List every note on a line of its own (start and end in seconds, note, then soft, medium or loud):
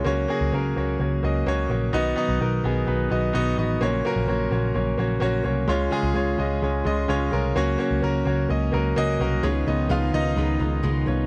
0.00 1.89 C#3 medium
0.04 0.25 C#2 loud
0.04 0.72 C#3 medium
0.04 1.92 F#3 medium
0.04 0.25 A#3 loud
0.04 1.92 A#3 medium
0.04 0.25 C#4 medium
0.04 0.26 F#4 medium
0.04 0.26 C#5 loud
0.28 0.49 A#3 medium
0.28 0.49 C#4 medium
0.28 0.49 F#4 medium
0.28 0.49 G#4 loud
0.41 0.51 C#2 medium
0.52 0.72 C#2 medium
0.52 0.72 A#3 medium
0.52 0.73 C#4 medium
0.52 0.73 F#4 medium
0.52 0.73 A#4 medium
0.76 0.96 C#2 medium
0.76 0.96 A#3 medium
0.76 0.96 C#4 medium
0.76 0.96 F#4 medium
0.76 0.97 C#5 medium
0.99 1.19 C#2 medium
0.99 1.19 A#3 medium
0.99 1.19 C#4 medium
0.99 1.20 F#4 medium
0.99 1.20 C#5 medium
1.23 1.42 C#2 medium
1.23 1.43 A#3 medium
1.23 1.43 C#4 medium
1.23 1.43 F#4 medium
1.23 1.44 D#5 medium
1.46 1.66 C#2 medium
1.46 1.66 A#3 loud
1.46 1.66 C#4 medium
1.46 1.67 F#4 medium
1.46 1.67 C#5 loud
1.69 1.89 A#1 medium
1.69 1.89 A#3 medium
1.69 1.90 C#4 medium
1.69 1.90 F#4 medium
1.69 1.90 C#5 medium
1.93 2.13 B1 loud
1.93 2.60 B2 medium
1.93 3.79 D#3 medium
1.93 5.65 F#3 medium
1.93 2.13 B3 loud
1.93 3.79 B3 medium
1.93 2.13 D#4 medium
1.93 2.14 F#4 medium
1.93 2.14 D#5 loud
2.15 2.36 B3 medium
2.15 2.36 D#4 medium
2.15 2.37 F#4 medium
2.15 2.37 D#5 loud
2.29 2.38 B1 medium
2.39 2.60 B1 medium
2.39 2.60 B3 medium
2.39 2.60 D#4 medium
2.39 2.60 F#4 medium
2.39 2.61 A#4 medium
2.64 2.83 B1 medium
2.64 2.83 B3 medium
2.64 2.84 D#4 medium
2.64 2.84 F#4 medium
2.64 2.84 G#4 medium
2.86 3.07 B1 loud
2.86 3.06 B3 medium
2.86 3.07 D#4 medium
2.86 3.07 F#4 medium
2.86 3.07 B4 medium
3.10 3.30 B1 medium
3.10 3.30 B3 medium
3.10 3.30 D#4 medium
3.10 3.31 F#4 medium
3.10 3.31 D#5 medium
3.33 3.54 B1 medium
3.33 3.53 B3 medium
3.33 3.54 D#4 medium
3.33 3.54 F#4 medium
3.33 3.54 D#5 loud
3.57 3.77 A1 medium
3.57 3.77 B3 medium
3.57 3.77 D#4 medium
3.57 3.78 F#4 medium
3.57 3.78 D#5 medium
3.81 4.00 A#1 loud
3.81 4.48 A#2 medium
3.81 5.67 C#3 medium
3.81 4.01 A#3 loud
3.81 5.67 A#3 medium
3.81 4.01 C#4 medium
3.81 4.01 F#4 medium
3.81 4.02 C#5 loud
4.05 4.24 A#3 loud
4.05 4.25 C#4 medium
4.05 4.25 F#4 medium
4.05 4.25 A#4 loud
4.16 4.26 A#1 medium
4.28 4.47 A#1 medium
4.28 4.48 A#3 medium
4.28 4.48 C#4 medium
4.28 4.48 F#4 medium
4.28 4.48 C#5 medium
4.51 4.70 A#1 medium
4.51 4.71 A#3 medium
4.51 4.71 C#4 medium
4.51 4.71 F#4 medium
4.51 4.72 C#5 medium
4.74 4.94 A#1 loud
4.74 4.94 A#3 medium
4.74 4.94 C#4 medium
4.74 4.95 F#4 medium
4.74 4.95 C#5 medium
4.98 5.17 A#1 medium
4.98 5.18 A#3 medium
4.98 5.18 C#4 medium
4.98 5.18 F#4 medium
4.98 5.19 C#5 medium
5.20 5.41 A#1 medium
5.20 5.41 A#3 loud
5.20 5.41 C#4 medium
5.20 5.41 F#4 loud
5.20 5.42 C#5 loud
5.44 5.64 C2 medium
5.44 5.64 A#3 medium
5.44 5.64 C#4 medium
5.44 5.65 F#4 medium
5.44 5.65 C#5 medium
5.68 5.87 C#2 loud
5.68 9.40 C#3 medium
5.68 6.35 C#3 medium
5.68 5.88 G#3 loud
5.68 7.54 G#3 medium
5.68 5.88 C#4 loud
5.68 7.54 F4 medium
5.68 5.88 F4 loud
5.68 5.89 C#5 loud
5.91 6.11 G#3 loud
5.91 6.11 C#4 medium
5.91 6.12 F4 medium
5.91 6.12 G#4 loud
6.03 6.13 C#2 medium
6.14 6.34 C#2 medium
6.14 6.34 G#3 medium
6.14 6.35 C#4 medium
6.14 6.35 F4 medium
6.14 6.35 C#5 loud
6.38 6.58 C#2 medium
6.38 6.58 G#3 medium
6.38 6.58 C#4 medium
6.38 6.59 F4 medium
6.38 6.59 D#5 medium
6.62 6.81 C#2 medium
6.62 6.82 G#3 medium
6.62 6.82 C#4 medium
6.62 6.82 F4 medium
6.62 6.83 C#5 medium
6.85 7.05 C#2 loud
6.85 7.05 G#3 medium
6.85 7.05 C#4 medium
6.85 7.06 F4 medium
6.85 7.06 D#5 loud
7.08 7.28 C#2 loud
7.08 7.28 G#3 loud
7.08 7.29 C#4 medium
7.08 7.29 F4 loud
7.08 7.29 C#5 loud
7.31 7.52 C2 medium
7.31 7.52 G#3 medium
7.31 7.52 C#4 medium
7.31 7.52 F4 medium
7.31 7.52 A#4 loud
7.56 7.75 C#2 loud
7.56 8.23 C#3 medium
7.56 9.42 F#3 medium
7.56 7.76 A#3 loud
7.56 9.42 A#3 medium
7.56 7.76 C#4 loud
7.56 7.76 F#4 loud
7.56 7.76 C#5 loud
7.78 7.98 A#3 loud
7.78 7.99 C#4 medium
7.78 7.99 F#4 medium
7.78 7.99 C#5 loud
7.91 8.01 C#2 medium
8.02 8.22 C#2 medium
8.02 8.22 A#3 medium
8.02 8.22 C#4 medium
8.02 8.23 F#4 medium
8.02 8.23 A#4 loud
8.25 8.45 C#2 medium
8.25 8.46 A#3 medium
8.25 8.46 C#4 medium
8.25 8.46 F#4 medium
8.25 8.46 C#5 medium
8.49 8.69 C#2 medium
8.49 8.69 A#3 medium
8.49 8.69 C#4 medium
8.49 8.69 F#4 medium
8.49 8.70 D#5 medium
8.72 8.93 C#2 loud
8.72 8.92 A#3 medium
8.72 8.93 C#4 medium
8.72 8.93 F#4 medium
8.72 8.93 A#4 loud
8.96 9.16 C#2 medium
8.96 9.16 A#3 loud
8.96 9.16 C#4 medium
8.96 9.17 F#4 medium
8.96 9.17 D#5 loud
9.20 9.39 C2 medium
9.20 9.40 A#3 medium
9.20 9.40 C#4 medium
9.20 9.40 F#4 medium
9.20 9.40 A#4 loud
9.43 9.63 C#2 loud
9.43 9.67 C#3 medium
9.43 11.27 D#3 medium
9.43 9.67 G#3 medium
9.43 9.67 B3 medium
9.43 9.66 C#4 medium
9.43 11.27 D#4 medium
9.43 9.66 F4 loud
9.43 9.65 B4 loud
9.43 9.68 C#5 loud
9.66 9.86 C#2 medium
9.66 11.27 D#3 medium
9.66 11.27 F3 soft
9.66 9.89 B3 soft
9.66 11.27 B3 medium
9.66 9.90 D#4 medium
9.66 9.89 F4 medium
9.66 9.90 B4 medium
9.66 9.89 D#5 medium
9.89 10.09 C#2 loud
9.89 10.13 C#3 medium
9.89 10.13 G#3 medium
9.89 10.13 B3 medium
9.89 10.12 F4 medium
9.89 10.13 F4 medium
9.89 10.11 B4 loud
9.89 10.13 F5 loud
10.12 10.33 C#2 medium
10.12 10.36 B3 soft
10.12 11.04 D#4 medium
10.12 10.37 F4 soft
10.12 10.36 B4 medium
10.12 11.10 D#5 loud
10.36 10.56 C#2 loud
10.36 10.60 G#3 medium
10.36 10.60 B3 medium
10.36 10.59 F4 medium
10.36 10.58 B4 medium
10.59 10.80 C#2 loud
10.59 10.82 B3 soft
10.59 10.83 F4 medium
10.59 10.83 B4 medium
10.83 11.03 C#2 loud
10.83 11.07 C#3 medium
10.83 11.07 G#3 medium
10.83 11.07 B3 medium
10.83 11.06 F4 medium
10.83 11.05 B4 medium
11.06 11.27 C2 medium
11.06 11.27 B3 medium
11.06 11.27 C#4 medium
11.06 11.27 F4 medium
11.06 11.27 B4 medium
11.06 11.27 C#5 medium